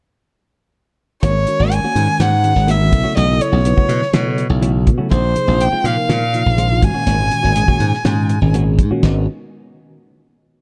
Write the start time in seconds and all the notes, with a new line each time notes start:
1.22 G#1 D#3 A#3 C#4 F#4 C#5, kick, closed hi-hat
1.35 muted clean electric guitar stroke
1.47 D#3 G#3 C#4 F#4 A#4, muted clean electric guitar stroke, closed hi-hat
1.60 G#1 A#3 C#4 F#4
1.72 G#5, closed hi-hat
1.84 A#3 C#4 F#4
1.95 G#2 D#3 G#3 C#4 F#4 A#4, closed hi-hat
2.09 muted clean electric guitar stroke
2.20 G#2 D#3 A#3 C#4 F#4 F#5, snare, closed hi-hat
2.32 muted clean electric guitar stroke
2.44 D#3 G#3 C#4 F#4 G#4, muted clean electric guitar stroke, closed hi-hat
2.56 G#1
2.67 D#3 A#3 C#4 F#4 E5, closed hi-hat
2.79 D#3 G#3 C#4 F#4 A#4, muted clean electric guitar stroke
2.91 B1 C#3 F#3 B3 E4 A4, muted clean electric guitar stroke, kick, closed hi-hat
3.04 A3 C#4 F#4, muted slap bass stroke
3.16 B1 E3 A3 C#4 F#4 D#5, closed hi-hat
3.28 C#3 F#3 B3 E4 A4, muted clean electric guitar stroke
3.40 C#5, muted clean electric guitar stroke, closed hi-hat
3.52 B1 A3 C#4 F#4
3.65 C#3 F#3 B3 E4 B4, closed hi-hat
3.77 A3 C#4 F#4, kick
3.88 B2, closed hi-hat
4.01 muted clean electric guitar stroke, snare
4.12 B2 C#3 E3 F#3 A3 B3 C#4 E4 F#4 A4, snare, closed hi-hat
4.25 muted clean electric guitar stroke
4.38 muted clean electric guitar stroke, closed hi-hat
4.49 B1 C#3 F#3 B3 E4 A4
4.61 E3 A3 C#4 F#4, closed hi-hat
4.74 muted clean electric guitar stroke
4.86 B2, muted clean electric guitar stroke, kick, closed hi-hat
4.98 C#3 F#3 A3 B3 C#4 E4 F#4 A4, muted slap bass stroke
5.10 A#1 D#3 G#3 C4 F4 C5, kick, closed hi-hat
5.23 muted clean electric guitar stroke
5.35 C3 F3 A#3 D#4 G#4, muted clean electric guitar stroke, closed hi-hat
5.47 A#1 G#3 C4 F4
5.61 G5, closed hi-hat
5.72 G#3 C4 F4, muted slap bass stroke
5.83 A#2 C3 F3 A#3 D#4 A#4 F5, closed hi-hat
5.97 muted clean electric guitar stroke
6.09 A#2 D#3 G#3 C4 F4, snare, closed hi-hat
6.21 muted clean electric guitar stroke
6.33 C3 F3 A#3 D#4 F4, muted clean electric guitar stroke, closed hi-hat
6.46 A#1
6.57 D#3 G#3 C4 F4, closed hi-hat
6.70 C3 F3 A#3 D#4 F4, muted clean electric guitar stroke
6.82 G#1 A#2 D#3 G#3 C#4 F#4 G#5, muted clean electric guitar stroke, kick, closed hi-hat
6.94 A#3 C#4 F#4, muted slap bass stroke
7.06 G#1 D#3 A#3 C#4 F#4, closed hi-hat
7.19 A#2 D#3 G#3 C#4 F#4
7.31 muted clean electric guitar stroke, closed hi-hat
7.43 G#1 A#3 C#4 F#4
7.55 A#2 D#3 G#3 C#4 G#4, muted clean electric guitar stroke, closed hi-hat
7.68 A#3 C#4 F#4, kick
7.80 G#2, closed hi-hat
7.93 muted clean electric guitar stroke, snare
8.04 G#2 A#2 D#3 G#3 A#3 C#4 F#4 G#4, snare, closed hi-hat
8.17 muted clean electric guitar stroke
8.29 muted clean electric guitar stroke, closed hi-hat
8.41 G#1 A#2 D#3 G#3 C#4 G#4
8.54 D#3 A#3 C#4 F#4, closed hi-hat
8.66 muted clean electric guitar stroke
8.78 G#2, muted clean electric guitar stroke, kick, closed hi-hat
8.90 A#2 D#3 G#3 A#3 C#4 F#4, muted slap bass stroke
9.02 G#1 D#3 G#3 B3 C#4 D#4 F#4 B4, kick, snare, crash